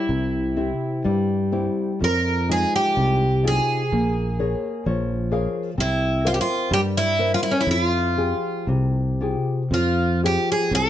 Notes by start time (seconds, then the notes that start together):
Already playing: E4
0.09 C2 C3
0.57 C4 E4 G4
1.04 G2 G3
1.52 C4 E4 G4
2.00 F2 F3 A#4
2.49 G#3 D#4 F4 G#4
2.76 G4
2.96 C2 C3
3.43 D#4 F4 G#4
3.47 G#4
3.92 A#1 A#3
4.39 G#4 A#4 C#5
4.86 A#1 F3 C#5
5.31 G#4 A#4 C#5 F5
5.78 C2 C4 E4
6.25 F4 A#4 C5 E5
6.34 G4
6.41 F4
6.71 G2 G3 G4
6.97 E4
7.19 A#4 C5 E5
7.34 F4
7.43 E4
7.51 C#4
7.61 E4
7.67 F2 F3
7.71 F4
8.17 F4 G4 G#4
8.67 C2 C3
9.21 F4 G4 G#4
9.71 F2 F3 F4
10.23 F4 G4 G#4
10.52 G#4
10.71 C2 C3 A#4